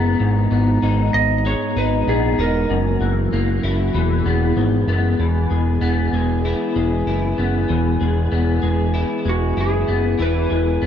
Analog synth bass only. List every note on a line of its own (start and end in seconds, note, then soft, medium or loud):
0.00 0.16 F#1 medium
0.20 0.47 G#1 medium
0.52 0.79 G#1 loud
0.83 1.10 G#1 loud
1.14 1.55 G#1 loud
1.76 2.04 G#1 loud
2.07 2.35 A#1 medium
2.39 2.66 E1 loud
2.70 2.97 F#1 medium
3.01 3.28 F#1 loud
3.33 3.60 F#1 loud
3.63 3.91 F#1 loud
3.95 4.22 E1 loud
4.26 4.53 E1 loud
4.57 4.84 G#1 medium
4.88 5.16 F#1 medium
5.19 5.47 E1 medium
5.51 5.78 E1 loud
5.82 6.09 E1 medium
6.13 6.54 E1 medium
6.76 7.03 E1 loud
7.07 7.35 F#1 medium
7.38 7.66 F#1 medium
7.70 7.97 E1 medium
8.01 8.29 E1 loud
8.32 8.60 E1 medium
8.63 9.05 E1 medium
9.26 9.53 E1 loud
9.57 9.85 F#1 medium
9.89 10.16 F#1 medium
10.20 10.47 E1 medium
10.51 10.79 E1 medium
10.82 10.86 E1 medium